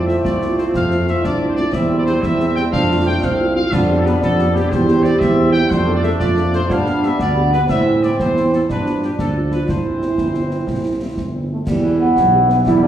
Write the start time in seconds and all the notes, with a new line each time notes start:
Already playing: F2 A3 C4 F4
0.06 A3 C4 F4 E5, snare
0.23 C2 F4 D5, concert bass drum, snare
0.40 A3 C4 F4, snare
0.57 A3 C4 F4 C5, snare
0.74 F2 F5, concert bass drum, snare
0.90 A3 C4 F4, snare
1.06 A3 C4 F4 E5, snare
1.23 C2 D4 D5, concert bass drum, snare
1.41 A3 C4 F4
1.49 C5
1.56 A3 C4 F4 D5, snare
1.72 E2 G3 C4 E5, concert bass drum, snare
1.91 G3 C4 G4
1.98 D5
2.06 G3 C4 G4 C5, snare
2.22 E2 E5, concert bass drum, snare
2.39 G3 C4 G4, snare
2.48 E5
2.55 G3 C4 G4 G5, snare
2.71 F2 A3 D4 F5, concert bass drum, snare
2.90 A3 C4 F4
3.06 A3 C4 F4 G5
3.22 C2 C4 F5, concert bass drum, snare
3.40 A3 C4 F4
3.55 A3 C4 F4 F5
3.71 F2 G3 B3 D4 F4, concert bass drum, snare, crash
3.89 B3 D4 G4
3.98 A4
4.05 B3 D4 G4 B4, snare
4.21 F2 D4 A4, concert bass drum, snare
4.39 B3 D4 G4, snare
4.54 B3 D4 G4, snare
4.70 E2 C4 G4 C5, concert bass drum, snare
4.88 C4 E4 G4, snare
5.03 C4 E4 G4 D5, snare
5.19 E2 E5, concert bass drum, snare
5.37 C4 E4 G4
5.52 C4 E4 G4 G5, snare
5.69 F2 A3 D4 C5, concert bass drum, snare
5.87 A3 D4 A4
5.94 D5
6.03 A3 D4 A4 E5, snare
6.20 F2 F4 D5, concert bass drum, snare
6.36 A3 D4 A4, snare
6.53 A3 D4 A4 C5, snare
6.67 G2 G3 B3 D4, concert bass drum, snare
6.71 F5
6.86 B3 D4 G4, snare
7.03 B3 D4 G4 E5, snare
7.19 D2 B3 D5, concert bass drum, snare
7.36 B3 D4 G4
7.52 B3 D4 G4 B4, snare
7.68 A2 E3 C4 E5, concert bass drum, snare, crash
7.87 C4 E4
8.03 C4 E4 D5, snare
8.19 E2 C5, concert bass drum, snare
8.36 C4 E4, snare
8.53 C4 E4 A4, snare
8.68 G2 F3 D4 B4, concert bass drum, snare
8.86 G3 D4 F4, snare
9.02 G3 D4 F4 G4, snare
9.18 D2 D4 A4, concert bass drum, snare
9.36 G3 D4 F4
9.52 G3 D4 F4 B4, snare
9.68 C2 E3 C4 E4 C5, concert bass drum, snare
9.84 G3 C4 E4
10.02 G3 C4 E4, snare
10.18 G1, concert bass drum, snare
10.34 G3 C4 E4, snare
10.51 G3 C4 E4, snare
10.67 C2, concert bass drum, snare
10.85 G3 C4 E4
11.00 G3 C4 E4
11.17 G1, concert bass drum, snare
11.35 G3 C4 E4
11.51 G3 A3 C4 E4
11.67 E2 E3 G3, concert bass drum, snare, crash
11.83 G3 B3 G4 B4
12.00 G3 B3 G4 B4
12.17 B1, concert bass drum, snare
12.32 G3 B3 G4 B4
12.50 G3 B3 G4 B4, snare
12.65 E2 G3 E4, concert bass drum, snare
12.83 G3 B3 D4 G4 B4